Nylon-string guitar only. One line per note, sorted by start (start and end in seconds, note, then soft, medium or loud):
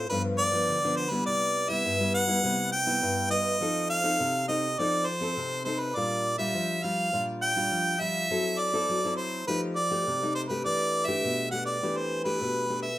0.10 0.66 G2 medium
0.10 0.49 F3 medium
0.10 0.49 B3 medium
0.10 0.50 D4 medium
0.52 0.78 F3 medium
0.52 0.78 B3 medium
0.52 0.78 D4 medium
0.69 1.24 D3 medium
0.84 1.08 F3 medium
0.84 1.08 B3 medium
0.84 1.08 D4 medium
1.11 1.66 G3 medium
1.11 1.66 B3 medium
1.11 1.66 E4 medium
1.27 1.83 C3 medium
1.69 1.95 G3 medium
1.69 1.95 B3 medium
1.69 1.95 E4 medium
1.85 2.41 G2 medium
2.00 2.25 G3 medium
2.00 2.25 B3 medium
2.00 2.25 E4 medium
2.27 2.38 G3 medium
2.27 2.39 B3 medium
2.27 2.39 E4 medium
2.43 3.00 C3 medium
2.43 2.71 G3 medium
2.43 2.71 B3 medium
2.43 2.72 E4 medium
2.86 3.26 G3 medium
2.86 3.27 B3 medium
2.86 3.27 E4 medium
3.02 3.58 G2 medium
3.31 3.56 G3 medium
3.31 3.56 B3 medium
3.31 3.57 E4 medium
3.61 4.17 F3 medium
3.61 4.00 C4 medium
3.61 4.01 D#4 medium
3.61 4.01 A4 medium
4.03 4.44 C4 medium
4.03 4.44 D#4 medium
4.03 4.44 A4 medium
4.20 4.76 C3 medium
4.48 4.66 C4 medium
4.48 4.66 D#4 medium
4.48 4.66 A4 medium
4.79 5.34 F3 medium
4.79 5.06 C4 medium
4.79 5.06 D#4 medium
4.79 5.07 A4 medium
5.21 5.61 C4 medium
5.21 5.61 D#4 medium
5.21 5.61 A4 medium
5.37 5.93 C3 medium
5.65 5.91 C4 medium
5.65 5.91 D#4 medium
5.65 5.91 A4 medium
5.96 6.52 A#2 medium
5.96 6.35 G3 medium
5.96 6.36 D4 medium
5.96 6.36 F4 medium
6.38 6.78 G3 medium
6.38 6.79 D4 medium
6.38 6.79 F4 medium
6.55 7.10 F3 medium
6.83 7.08 G3 medium
6.83 7.08 D4 medium
6.83 7.09 F4 medium
7.13 7.69 A#2 medium
7.13 7.52 G3 medium
7.13 7.53 D4 medium
7.13 7.53 F4 medium
7.56 7.96 G3 medium
7.56 7.96 D4 medium
7.56 7.96 F4 medium
7.72 8.27 F3 medium
8.00 8.25 G3 medium
8.00 8.26 D4 medium
8.00 8.26 F4 medium
8.30 8.86 F#3 medium
8.30 8.70 C4 medium
8.30 8.70 E4 medium
8.30 8.70 A4 medium
8.73 8.98 C4 medium
8.73 8.98 E4 medium
8.73 8.99 A4 medium
8.89 9.45 F#3 medium
9.05 9.43 C4 medium
9.05 9.44 E4 medium
9.05 9.44 A4 medium
9.48 10.04 F3 medium
9.48 9.75 A3 medium
9.48 9.76 D#4 medium
9.48 9.76 G4 medium
9.91 10.16 A3 medium
9.91 10.16 D#4 medium
9.91 10.16 G4 medium
10.07 10.62 C3 medium
10.23 10.46 A3 medium
10.23 10.47 D#4 medium
10.23 10.47 G4 medium
10.50 11.04 A3 medium
10.50 11.04 D4 medium
10.50 11.04 G4 medium
10.65 11.21 E3 medium
11.07 11.48 A3 medium
11.07 11.48 D4 medium
11.07 11.48 G4 medium
11.24 11.80 B2 medium
11.52 11.77 A3 medium
11.52 11.77 D4 medium
11.52 11.78 G4 medium
11.82 12.38 E3 medium
11.82 12.22 A3 medium
11.82 12.22 D4 medium
11.82 12.22 G4 medium
12.25 12.65 A3 medium
12.25 12.65 D4 medium
12.25 12.65 G4 medium
12.41 12.97 B2 medium
12.69 12.87 A3 medium
12.69 12.87 D4 medium
12.69 12.87 G4 medium